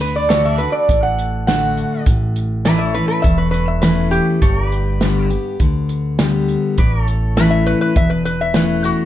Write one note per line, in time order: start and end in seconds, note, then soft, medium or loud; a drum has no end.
0.00 0.64 D2 medium
0.00 0.29 D3 medium
0.00 0.15 B4 medium
0.00 closed hi-hat medium
0.16 0.44 D5 medium
0.29 0.59 D3 medium
0.29 0.59 A3 medium
0.29 0.59 D4 medium
0.29 0.59 F#4 medium
0.29 2.04 A4 medium
0.29 0.50 C#5 medium
0.29 snare loud
0.29 closed hi-hat medium
0.45 0.59 E5 medium
0.50 2.05 D5 medium
0.58 0.88 F#4 medium
0.58 0.73 B4 medium
0.58 closed hi-hat medium
0.63 0.89 D4 soft
0.72 1.02 D5 medium
0.89 1.82 A1 medium
0.89 2.01 A2 medium
0.89 kick loud
0.89 closed hi-hat medium
1.03 1.46 F#5 medium
1.19 closed hi-hat medium
1.47 2.04 D3 medium
1.47 2.04 A3 medium
1.47 2.04 D4 medium
1.47 2.05 F#4 loud
1.47 2.05 F#5 medium
1.47 snare loud
1.47 closed hi-hat medium
1.77 closed hi-hat medium
2.06 3.00 A1 medium
2.06 3.19 A2 medium
2.06 kick loud
2.06 closed hi-hat medium
2.36 closed hi-hat medium
2.65 2.94 E3 medium
2.65 2.94 A3 medium
2.65 2.95 C#4 medium
2.65 2.94 E4 medium
2.65 4.41 A4 medium
2.65 2.80 B4 loud
2.65 2.87 D5 medium
2.65 snare loud
2.65 closed hi-hat medium
2.79 2.94 E5 medium
2.87 4.41 C#5 medium
2.94 3.24 C#4 soft
2.94 3.23 E4 medium
2.94 3.07 B4 medium
2.94 closed hi-hat medium
3.08 3.23 B4 medium
3.22 4.18 E1 medium
3.22 4.37 E2 medium
3.22 3.38 E5 medium
3.22 kick loud
3.22 closed hi-hat medium
3.38 3.50 B4 medium
3.51 3.67 B4 medium
3.51 closed hi-hat medium
3.68 3.83 E5 medium
3.82 4.39 E3 medium
3.82 4.39 A3 medium
3.82 4.40 C#4 medium
3.82 4.40 E4 medium
3.82 4.11 B4 medium
3.82 snare loud
3.82 closed hi-hat medium
4.11 5.26 G4 medium
4.11 closed hi-hat medium
4.42 5.36 G1 loud
4.42 5.55 G2 medium
4.42 4.67 A4 medium
4.42 4.62 C#5 medium
4.42 kick loud
4.42 closed hi-hat medium
4.62 6.76 D5 medium
4.67 6.76 B4 medium
4.72 closed hi-hat medium
5.00 5.29 D3 medium
5.00 5.30 G3 medium
5.00 5.30 B3 medium
5.00 5.29 G4 medium
5.00 snare medium
5.00 closed hi-hat medium
5.30 5.60 B3 soft
5.30 5.59 G4 medium
5.30 closed hi-hat medium
5.60 6.54 D2 medium
5.60 6.18 D3 medium
5.60 kick loud
5.60 closed hi-hat medium
5.89 closed hi-hat medium
6.19 6.75 D3 medium
6.19 6.76 G3 medium
6.19 6.76 B3 medium
6.19 6.77 G4 medium
6.19 snare loud
6.19 closed hi-hat medium
6.49 closed hi-hat soft
6.78 7.72 A1 medium
6.78 7.91 A2 medium
6.78 7.03 B4 medium
6.78 7.00 D5 medium
6.78 kick loud
6.78 closed hi-hat medium
7.00 9.05 A4 medium
7.00 9.05 C#5 medium
7.08 closed hi-hat medium
7.37 7.94 E3 medium
7.37 7.94 A3 medium
7.37 7.95 C#4 medium
7.37 7.95 E4 medium
7.37 7.52 B4 loud
7.37 snare loud
7.37 closed hi-hat medium
7.50 7.66 E5 medium
7.66 7.80 B4 medium
7.66 closed hi-hat medium
7.81 7.96 B4 loud
7.96 8.90 E1 medium
7.96 9.05 E2 medium
7.96 8.11 E5 medium
7.96 kick loud
7.96 closed hi-hat medium
8.10 8.24 B4 medium
8.25 8.40 B4 medium
8.25 closed hi-hat medium
8.41 8.55 E5 medium
8.54 9.05 E3 medium
8.54 9.05 A3 medium
8.54 9.05 C#4 medium
8.54 9.05 E4 medium
8.54 8.84 B4 medium
8.54 snare loud
8.54 closed hi-hat medium
8.84 9.05 F#4 medium
8.84 closed hi-hat medium